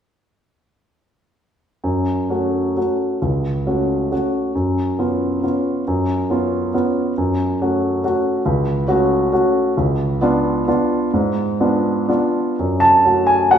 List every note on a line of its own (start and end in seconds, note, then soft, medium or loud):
1.84 2.28 F#2 soft
2.29 2.73 A3 soft
2.29 2.73 C#4 soft
2.29 2.73 F#4 soft
2.76 3.18 A3 soft
2.76 3.19 C#4 soft
2.76 3.19 F#4 soft
3.22 3.65 C#2 soft
3.66 4.08 A3 soft
3.66 4.08 C#4 soft
3.66 4.08 F#4 soft
4.11 4.52 A3 soft
4.11 4.52 C#4 soft
4.11 4.52 F#4 soft
4.55 4.97 F#2 soft
4.99 5.39 B3 soft
4.99 5.40 C#4 soft
4.99 5.40 F4 soft
5.43 5.83 B3 soft
5.43 5.83 C#4 soft
5.43 5.84 F4 soft
5.87 6.28 F#2 soft
6.30 6.69 B3 soft
6.30 6.69 C#4 soft
6.30 6.70 F4 soft
6.74 7.13 B3 soft
6.74 7.13 C#4 soft
6.74 7.13 F4 soft
7.18 7.58 F#2 soft
7.61 8.00 A3 soft
7.61 8.00 C#4 soft
7.61 8.00 F#4 soft
8.04 8.41 A3 soft
8.04 8.41 C#4 soft
8.04 8.42 F#4 soft
8.46 8.86 C#2 soft
8.88 9.28 A3 soft
8.88 9.28 C#4 soft
8.88 9.28 F#4 soft
9.32 9.73 A3 soft
9.32 9.73 C#4 soft
9.32 9.73 F#4 soft
9.77 10.20 C#2 medium
10.21 10.64 B3 soft
10.21 10.64 D4 soft
10.21 10.64 F4 soft
10.68 11.10 B3 soft
10.68 11.10 D4 soft
10.68 11.10 F4 soft
11.14 11.58 G#2 soft
11.60 12.05 B3 soft
11.60 12.05 D4 soft
11.60 12.05 F4 soft
12.08 12.55 B3 soft
12.08 12.55 D4 soft
12.08 12.55 F4 soft
12.59 13.03 F#2 soft
12.80 13.27 A5 medium
13.05 13.48 A3 soft
13.05 13.48 C#4 soft
13.05 13.48 F#4 soft
13.27 13.51 G#5 medium
13.51 13.58 A3 soft
13.51 13.58 C#4 soft
13.51 13.58 F#4 soft
13.51 13.58 F#5 medium